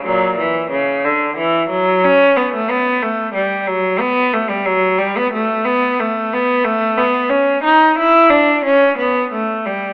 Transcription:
\new Staff \with { instrumentName = "Cello" } { \time 6/8 \key b \minor \tempo 4. = 60 <ais, fis>8 e8 cis8 d8 e8 fis8 | cis'8 b16 a16 b8 a8 g8 fis8 | b8 a16 g16 fis8 g16 b16 a8 b8 | \key a \mixolydian a8 b8 a8 b8 cis'8 ees'8 |
e'8 d'8 cis'8 b8 a8 g8 | }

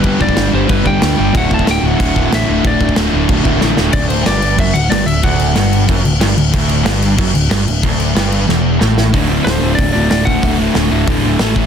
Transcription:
<<
  \new Staff \with { instrumentName = "Lead electric guitar" } { \time 4/4 \key d \major \tempo 4 = 185 b'8 d''4 c''8 b'8 g''4. | fis''8 a''8 g''8 fis''4. e''4 | d''4 r2. | d''8 c''8 d''4 e''8 fis''8 d''8 e''8 |
fis''2 r2 | r1 | r1 | r4 c''4 d''8 d''8 d''8 fis''8~ |
fis''8 r2. r8 | }
  \new Staff \with { instrumentName = "Distorted electric guitar" } { \clef bass \time 4/4 \key d \major <g, d g b d' g'>2.~ <g, d g b d' g'>8 <g, d g b d' g'>8 | <d, a, d a fis'>2.~ <d, a, d a fis'>8 <d, a, d a fis'>8 | <d, a, d a fis'>2.~ <d, a, d a fis'>8 <d, a, d a fis'>8 | d,4 g,4 fis,8 d,8 g,8 d,8 |
d,4 g,4 fis,8 d,8 g,8 d,8 | d,4 g,4 fis,8 d,8 g,8 d,8 | d,4 g,4 e,4 a,4 | <d, a, d a fis'>1 |
<d, a, d a fis'>2. <a, e a>4 | }
  \new Staff \with { instrumentName = "Overdriven electric guitar" } { \clef bass \time 4/4 \key d \major <g, d g>8 <g, d g>8 <g, d g>8 <g, d g>8 <g, d g>8 <g, d g>8 <g, d g>8 <g, d g>8 | <d, a, d>8 <d, a, d>8 <d, a, d>8 <d, a, d>8 <d, a, d>8 <d, a, d>8 <d, a, d>8 <d, a, d>8 | <d, a, d>8 <d, a, d>8 <d, a, d>8 <d, a, d>8 <d, a, d>8 <d, a, d>8 <d, a, d>8 <d, a, d>8 | d,4 g,4 fis,8 d,8 g,8 d,8 |
d,4 g,4 fis,8 d,8 g,8 d,8 | d,4 g,4 fis,8 d,8 g,8 d,8 | d,4 g,4 e,4 a,4 | <d, a, d>8 <d, a, d>8 <d, a, d>8 <d, a, d>8 <d, a, d>8 <d, a, d>8 <d, a, d>8 <d, a, d>8 |
<d, a, d>8 <d, a, d>8 <d, a, d>8 <d, a, d>8 <d, a, d>8 <d, a, d>8 <a, e a>8 <a, e a>8 | }
  \new Staff \with { instrumentName = "Overdriven electric guitar" } { \clef bass \time 4/4 \key d \major <g, d g>8 <g, d g>8 <g, d g>8 <g, d g>8 <g, d g>8 <g, d g>8 <g, d g>8 <g, d g>8 | <d, a, d>8 <d, a, d>8 <d, a, d>8 <d, a, d>8 <d, a, d>8 <d, a, d>8 <d, a, d>8 <d, a, d>8 | <d, a, d>8 <d, a, d>8 <d, a, d>8 <d, a, d>8 <d, a, d>8 <d, a, d>8 <d, a, d>8 <d, a, d>8 | d,4 g,4 fis,8 d,8 g,8 d,8 |
d,4 g,4 fis,8 d,8 g,8 d,8 | d,4 g,4 fis,8 d,8 g,8 d,8 | d,4 g,4 e,4 a,4 | <d, a, d>8 <d, a, d>8 <d, a, d>8 <d, a, d>8 <d, a, d>8 <d, a, d>8 <d, a, d>8 <d, a, d>8 |
<d, a, d>8 <d, a, d>8 <d, a, d>8 <d, a, d>8 <d, a, d>8 <d, a, d>8 <a, e a>8 <a, e a>8 | }
  \new Staff \with { instrumentName = "Picked electric bass" } { \clef bass \time 4/4 \key d \major g,,8 g,,8 g,,8 g,,8 g,,8 g,,8 d,8 g,,8 | d,,8 d,,8 d,,8 d,,8 d,,8 d,,8 a,,8 d,,8 | d,,8 d,,8 d,,8 d,,8 d,,8 d,,8 a,,8 d,,8 | d,,4 g,,4 fis,,8 d,,8 g,,8 d,,8 |
d,,4 g,,4 fis,,8 d,,8 g,,8 d,,8 | d,,4 g,,4 r8 d,,8 g,,8 d,,8 | d,,4 g,,4 e,,4 a,,4 | r4 d,,8 d,,8 d,,8 d,,8 d,,4 |
d,,4 d,,8 d,,8 d,,8 d,,8 a,,4 | }
  \new DrumStaff \with { instrumentName = "Drums" } \drummode { \time 4/4 <cymc bd>8 bd16 bd16 <cymc sn>4 <cymc bd>8 bd8 <cymc sn>4 | <cymc bd>8 bd16 bd16 <cymc sn>4 <cymc bd>8 bd8 <cymc sn>4 | <cymc bd>8 bd16 bd16 <cymc sn>4 <cymc bd>8 bd8 sn8 sn8 | <cymc bd>8 cymc8 <cymc sn>8 cymc8 <cymc bd>8 cymc8 <cymc sn>8 cymc8 |
<cymc bd>8 cymc8 <cymc sn>8 cymc8 <cymc bd>8 cymc8 <cymc sn>8 cymc8 | <cymc bd>8 cymc8 <cymc sn>8 cymc8 <cymc bd>8 cymc8 <cymc sn>8 cymc8 | <cymc bd>8 cymc8 <cymc sn>8 cymc8 sn4 sn8 sn8 | <hho bd>4 <hho sn>4 <hho bd>4 <hho sn>8 bd8 |
<hho bd>4 <hho sn>4 <hho bd>4 <hho sn>8 bd8 | }
>>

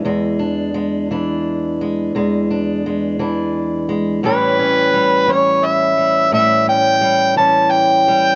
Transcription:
<<
  \new Staff \with { instrumentName = "Harmonica" } { \time 12/8 \key a \major \tempo 4. = 57 r1. | b'4. cis''8 e''4 e''8 g''4 a''8 g''4 | }
  \new Staff \with { instrumentName = "Steel-string acoustic guitar" } { \clef bass \time 12/8 \key a \major << { gis8 d'8 gis8 d'4 gis8 gis8 d'8 gis8 d'4 gis8 | <e g cis' g'>8 cis'8 g8 cis'4 g8 g8 cis'8 g8 cis'4 g8 | } \\ { e,4. e4. e,4. e4. | a,4. e4. a,4. e4. | } >> }
>>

